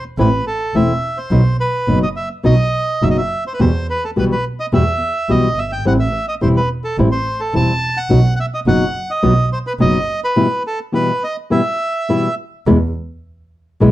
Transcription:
0.18 double bass A1, nylon-string guitar E3 A3 C4 E4, bandoneon B4
0.47 bandoneon A4
0.74 double bass E1, nylon-string guitar E3 A3 C4 E4, bandoneon E5
1.18 bandoneon C5
1.31 double bass B1, nylon-string guitar B2 F#3 B3 D#4 F#4
1.60 bandoneon B4
1.87 double bass F#1, nylon-string guitar B2 F#3 B3 D#4 F#4
2.03 bandoneon D#5
2.16 bandoneon E5
2.43 double bass B1, nylon-string guitar B2 F#3 B3 D#4 F#4, bandoneon D#5
3.02 double bass F#1, nylon-string guitar B2 F#3 B3 D#4 F#4, bandoneon E5
3.10 bandoneon D#5
3.18 bandoneon E5
3.47 bandoneon C5
3.54 bandoneon B4
3.59 double bass E2, nylon-string guitar B2 E3 G3 B3 F#4, bandoneon C5
3.90 bandoneon B4
4.04 bandoneon A4
4.16 double bass B1, nylon-string guitar B2 E3 G3 B3 F#4, bandoneon B4
4.32 bandoneon B4
4.60 bandoneon D#5
4.72 double bass E2, nylon-string guitar B2 E3 G3 B3 F#4, bandoneon E5
5.29 double bass B1, nylon-string guitar B2 E3 G3 B3 F#4, bandoneon D#5
5.57 double bass G1, bandoneon E5
5.72 bandoneon G5
5.85 double bass A1, nylon-string guitar E3 G3 C4 E4, bandoneon F#5
6.00 bandoneon E5
6.28 bandoneon D#5
6.41 double bass E1, nylon-string guitar E3 G3 C4 E4, bandoneon C5
6.57 bandoneon B4
6.84 bandoneon A4
6.98 double bass A1, nylon-string guitar E3 G3 C4 E4
7.12 bandoneon C5
7.40 bandoneon A4
7.53 double bass E1, nylon-string guitar E3 G3 C4 E4, bandoneon A5
7.97 bandoneon F#5
8.10 double bass B1, nylon-string guitar B2 F#3 B3 D#4 F#4
8.36 bandoneon F#5
8.40 bandoneon E5
8.54 bandoneon D#5
8.66 double bass F#1, nylon-string guitar B2 F#3 B3 D#4 F#4, bandoneon F#5
9.10 bandoneon D#5
9.22 double bass B1, nylon-string guitar B2 F#3 B3 D#4 F#4
9.53 bandoneon C5
9.67 bandoneon B4
9.80 double bass F#1, nylon-string guitar B2 F#3 B3 D#4 F#4, bandoneon D#5
10.24 bandoneon B4
10.36 nylon-string guitar B2 E3 G3 B3 E4
10.67 bandoneon A4
10.92 nylon-string guitar B2 E3 G3 B3 E4, bandoneon B4
11.24 bandoneon D#5
11.50 nylon-string guitar B2 E3 G3 B3 E4, bandoneon E5
12.09 nylon-string guitar B2 E3 G3 B3 E4
12.66 double bass E2, nylon-string guitar B2 E3 G#3 B3 E4
13.80 double bass B1, nylon-string guitar B2 E3 G#3 B3 E4

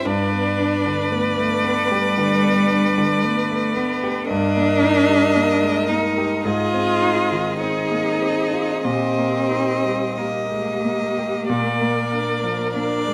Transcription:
0.05 grand piano G2, cello D4, viola B4, violin D5
0.32 grand piano B3
0.59 grand piano D4
0.86 grand piano D3
1.12 cello A3, grand piano B3
1.38 grand piano A3
1.64 cello B3, grand piano B3
1.90 cello G3, grand piano G4
2.18 grand piano D3
2.45 grand piano B3
2.71 grand piano D4
2.98 grand piano D3
3.23 cello A3, grand piano B3
3.50 grand piano A3
3.75 cello B3, grand piano B3
4.03 grand piano G4
4.27 grand piano G2, cello D4, viola A#4, violin D#5
4.56 grand piano A#3
4.82 grand piano D#4
5.09 grand piano G3
5.36 grand piano A#3
5.63 grand piano G#3
5.88 grand piano A#3, cello D#4
6.17 grand piano G4
6.44 grand piano G#2, cello F4, viola G#4, violin D#5
6.74 grand piano C4
7.02 grand piano D#4
7.32 grand piano D#3
7.59 grand piano C4, cello D#4, viola G#4, violin D#5
7.92 grand piano A#3
8.22 grand piano C4
8.53 grand piano F4
8.84 grand piano A#2, cello C4, viola G4, violin D#5
9.18 grand piano A#3
9.51 grand piano D#4
9.85 grand piano G3
10.16 cello A#3, grand piano A#3, viola G4, violin D#5
10.52 grand piano G#3
10.84 grand piano A#3
11.18 grand piano G4
11.49 grand piano A#2, viola A#4, violin D5
11.81 grand piano A#3
12.13 grand piano D4
12.44 grand piano F3
12.74 grand piano A#3, cello D4, violin D5
13.07 grand piano G#3

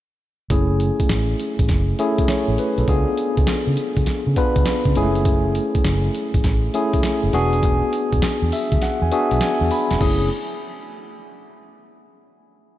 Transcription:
0.50 fingered electric bass F#1, tine electric piano A3 C#4 E4 G#4, kick, closed hi-hat
0.80 closed hi-hat
1.00 kick, closed hi-hat
1.09 fingered electric bass A1, snare, closed hi-hat
1.39 closed hi-hat
1.59 fingered electric bass A1, kick, closed hi-hat
1.69 fingered electric bass F#1, kick, snare, closed hi-hat
1.99 tine electric piano A3 C#4 E4 G#4, closed hi-hat
2.18 kick, closed hi-hat
2.28 tine electric piano C#5, muted fingered electric bass stroke, snare, closed hi-hat
2.48 fingered electric bass A1
2.58 tine electric piano B4, closed hi-hat
2.78 fingered electric bass B1, tine electric piano A4, closed hi-hat
2.88 fingered electric bass C#2, tine electric piano B3 D4 F4 G#4, kick, closed hi-hat
3.17 closed hi-hat
3.37 fingered electric bass C#2, kick, closed hi-hat
3.47 snare, closed hi-hat
3.67 fingered electric bass C#3
3.77 closed hi-hat
3.96 fingered electric bass C#2, kick, closed hi-hat
4.06 muted fingered electric bass stroke, snare, closed hi-hat
4.27 fingered electric bass C#3
4.36 tine electric piano B3 D4 F4 B4, kick, closed hi-hat
4.56 fingered electric bass C#2, kick, closed hi-hat
4.66 snare, closed hi-hat
4.85 fingered electric bass C#3, kick
4.95 fingered electric bass F#1, tine electric piano G#3 C#4 E4 G#4, closed hi-hat
5.02 tine electric piano A3
5.15 closed hi-hat
5.25 kick, closed hi-hat
5.55 closed hi-hat
5.75 kick, closed hi-hat
5.85 fingered electric bass F#1, snare, closed hi-hat
6.15 closed hi-hat
6.34 fingered electric bass A1, kick, closed hi-hat
6.44 fingered electric bass A1, kick, snare, closed hi-hat
6.74 tine electric piano A3 C#4 E4 G#4, closed hi-hat
6.93 kick, closed hi-hat
7.03 muted fingered electric bass stroke, snare, closed hi-hat
7.23 fingered electric bass F#1
7.33 fingered electric bass E1, tine electric piano B3 D4 F#4 G#4, closed hi-hat
7.53 closed hi-hat
7.63 kick, closed hi-hat
7.93 closed hi-hat
8.13 fingered electric bass E1, kick, closed hi-hat
8.22 muted fingered electric bass stroke, snare, closed hi-hat
8.42 fingered electric bass E2
8.52 tine electric piano E5, open hi-hat
8.72 fingered electric bass D2, kick, closed hi-hat
8.82 tine electric piano F#5, muted fingered electric bass stroke, snare, closed hi-hat
9.02 fingered electric bass E2, tine electric piano G#5
9.11 tine electric piano B3 D4 F#4 G#4 E5, closed hi-hat
9.31 fingered electric bass B1, closed hi-hat
9.41 tine electric piano G#5, snare, closed hi-hat
9.61 fingered electric bass E2
9.71 tine electric piano B5, open hi-hat
9.91 fingered electric bass E1, snare, closed hi-hat
10.01 fingered electric bass F#1, tine electric piano A3 C#4 E4 G#4, kick, crash

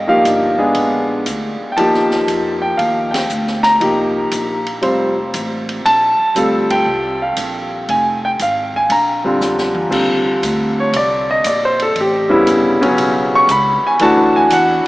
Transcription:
Already playing: upright bass G#1
0.07 grand piano F3 A#3 D#4 G4 F5
0.24 upright bass G1, hi-hat pedal, ride
0.58 grand piano G#3 B3 D4 G#4
0.75 upright bass A#1, ride
1.26 upright bass D2, hi-hat pedal, ride
1.61 muted upright bass stroke
1.72 grand piano G5
1.77 upright bass D#2, grand piano F3 A#3 D#4 G4 A5, ride
1.94 snare
2.11 snare
2.27 upright bass F2, hi-hat pedal, ride
2.62 grand piano G5
2.77 upright bass D#2, grand piano F5, ride
3.11 grand piano G5, snare, ride
3.30 upright bass D2, hi-hat pedal
3.47 snare
3.63 grand piano A#5, snare, ride
3.80 upright bass C2, grand piano F3 A#3 D#4 G4, ride
4.31 upright bass A#1, hi-hat pedal, ride
4.66 ride
4.81 upright bass F1, grand piano G3 C4 F4 C5, ride
5.34 upright bass A1, hi-hat pedal, ride
5.69 ride
5.85 upright bass A#1, grand piano A5, ride
6.19 muted upright bass stroke
6.35 upright bass D2, grand piano G3 C4 F4 A4, hi-hat pedal, ride
6.70 grand piano G5, kick, ride
6.86 upright bass C2
7.22 grand piano F5
7.36 upright bass A#1, hi-hat pedal, ride
7.88 upright bass F1, grand piano G#5, ride
8.25 grand piano G5
8.39 upright bass G#1, grand piano F5, hi-hat pedal, ride
8.74 grand piano G#5, kick
8.89 upright bass A#1, grand piano A#5, ride
9.24 grand piano D3 G3 C4 F4
9.41 upright bass F2, snare, hi-hat pedal
9.58 snare
9.75 mid tom
9.89 upright bass D#2, grand piano D3 G3 C4 F4, kick, crash
10.26 muted upright bass stroke
10.42 upright bass D2, hi-hat pedal, ride
10.80 grand piano C#5
10.93 upright bass C2, grand piano D5, ride
11.31 grand piano D#5
11.44 upright bass A#1, grand piano D5, hi-hat pedal, ride
11.65 grand piano C5
11.80 grand piano A4, ride
11.96 upright bass A1, ride
12.01 grand piano G4
12.29 grand piano C#3 G3 B3 E4
12.46 upright bass G1, hi-hat pedal, ride
12.81 grand piano C#3 F#3 B3 C#4, ride
12.97 upright bass B1, ride
13.35 grand piano C#6
13.47 upright bass C#2, grand piano B5, hi-hat pedal, ride
13.83 grand piano G#5, muted upright bass stroke
13.99 upright bass D2, grand piano E3 A3 D4 F#4 A5, ride
14.36 grand piano G#5
14.50 upright bass E2, grand piano F#5, hi-hat pedal, ride

